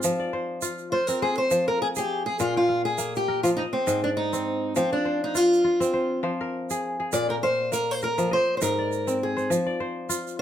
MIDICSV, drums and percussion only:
0, 0, Header, 1, 2, 480
1, 0, Start_track
1, 0, Tempo, 591716
1, 31, Time_signature, 4, 2, 24, 8
1, 8449, End_track
2, 0, Start_track
2, 0, Title_t, "Drums"
2, 22, Note_on_c, 9, 82, 65
2, 103, Note_off_c, 9, 82, 0
2, 502, Note_on_c, 9, 82, 65
2, 583, Note_off_c, 9, 82, 0
2, 636, Note_on_c, 9, 82, 21
2, 717, Note_off_c, 9, 82, 0
2, 874, Note_on_c, 9, 82, 49
2, 955, Note_off_c, 9, 82, 0
2, 1223, Note_on_c, 9, 82, 67
2, 1304, Note_off_c, 9, 82, 0
2, 1587, Note_on_c, 9, 82, 52
2, 1668, Note_off_c, 9, 82, 0
2, 1942, Note_on_c, 9, 82, 65
2, 2023, Note_off_c, 9, 82, 0
2, 2420, Note_on_c, 9, 82, 64
2, 2501, Note_off_c, 9, 82, 0
2, 2560, Note_on_c, 9, 82, 21
2, 2641, Note_off_c, 9, 82, 0
2, 2793, Note_on_c, 9, 82, 48
2, 2874, Note_off_c, 9, 82, 0
2, 3142, Note_on_c, 9, 82, 67
2, 3224, Note_off_c, 9, 82, 0
2, 3516, Note_on_c, 9, 82, 48
2, 3597, Note_off_c, 9, 82, 0
2, 3860, Note_on_c, 9, 82, 60
2, 3941, Note_off_c, 9, 82, 0
2, 4344, Note_on_c, 9, 82, 66
2, 4426, Note_off_c, 9, 82, 0
2, 4488, Note_on_c, 9, 82, 21
2, 4569, Note_off_c, 9, 82, 0
2, 4719, Note_on_c, 9, 82, 49
2, 4800, Note_off_c, 9, 82, 0
2, 5437, Note_on_c, 9, 82, 53
2, 5518, Note_off_c, 9, 82, 0
2, 5780, Note_on_c, 9, 82, 63
2, 5861, Note_off_c, 9, 82, 0
2, 6028, Note_on_c, 9, 82, 18
2, 6109, Note_off_c, 9, 82, 0
2, 6269, Note_on_c, 9, 82, 62
2, 6350, Note_off_c, 9, 82, 0
2, 6502, Note_on_c, 9, 82, 20
2, 6583, Note_off_c, 9, 82, 0
2, 6639, Note_on_c, 9, 82, 46
2, 6720, Note_off_c, 9, 82, 0
2, 6989, Note_on_c, 9, 82, 67
2, 7070, Note_off_c, 9, 82, 0
2, 7238, Note_on_c, 9, 82, 19
2, 7319, Note_off_c, 9, 82, 0
2, 7366, Note_on_c, 9, 82, 47
2, 7447, Note_off_c, 9, 82, 0
2, 7610, Note_on_c, 9, 82, 20
2, 7691, Note_off_c, 9, 82, 0
2, 7720, Note_on_c, 9, 82, 56
2, 7801, Note_off_c, 9, 82, 0
2, 8195, Note_on_c, 9, 82, 66
2, 8276, Note_off_c, 9, 82, 0
2, 8334, Note_on_c, 9, 82, 20
2, 8415, Note_off_c, 9, 82, 0
2, 8449, End_track
0, 0, End_of_file